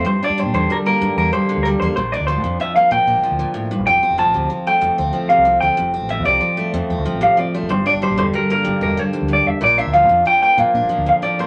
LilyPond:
<<
  \new Staff \with { instrumentName = "Clean electric guitar" } { \time 12/8 \key f \major \tempo 4. = 125 c''8 d''8 c''8 c''8 bes'8 bes'4 bes'8 c''4 bes'8 c''8 | c''8 d''8 c''4 e''8 f''8 g''2~ g''8 r8 | g''4 a''4 r8 g''4. r8 f''4 g''8~ | g''8 r8 e''8 d''4. r4. f''8 d''8 c''8 |
c''8 d''8 c''8 c''8 bes'8 bes'4 bes'8 c''4 d''8 e''8 | d''8 e''8 f''4 g''8 g''8 f''4. f''8 d''8 c''8 | }
  \new Staff \with { instrumentName = "Steel-string acoustic guitar" } { \clef bass \time 12/8 \key f \major << { r8 d'2 bes4 d'2 bes8 | r8 d'2 bes4 d'2~ d'8 | r8 c'2 a4 c'2 a8 | r8 c'2 a4 c'2 a8 |
r8 d'2 bes4 d'2~ d'8 | r8 d'2 bes4 d'2 bes8 | } \\ { g,4 g8 d8 g4 g,4 g8 d8 g4 | bes,4 f8 f,8 f4 bes,4 f8 bes,8 a,8 g,8 | f,4 f8 c8 f4 f,4 f8 c8 f4 | f,4 f8 c8 f4 f,4 f8 c8 f4 |
g,4 g8 d8 g4 g,4 g8 f,8 g,8 r8 | bes,4 f8 f,8 f4 bes,4 f8 f,8 f4 | } >> }
  \new Staff \with { instrumentName = "Fingered electric bass" } { \clef bass \time 12/8 \key f \major g,8 r16 g,8 bes,16 e,8 r4 g,16 r16 e,8 r8. d,8. e,16 r16 | bes,,8. d,8 bes,16 f,8 r4 bes,16 r16 bes,16 g,,16 r16 d,8 r4 bes,,16 | f,,8 r16 f,,8 a,,16 d,8 r4 f,,16 r16 d,8 r8. c,8. d,16 r16 | f,,8. a,,8 f,16 c,8 r4 f,16 r16 f,16 d,16 r16 a,,8 r4 ges,,16 |
g,,8 r16 g,,8 bes,,16 e,,8 r4 g,,16 r16 e,,8 r8. d,8. e,,16 r16 | bes,,8. d,8 bes,16 f,8 r4 bes,16 r16 bes,16 g,,16 r16 d,8 r4 r16 | }
>>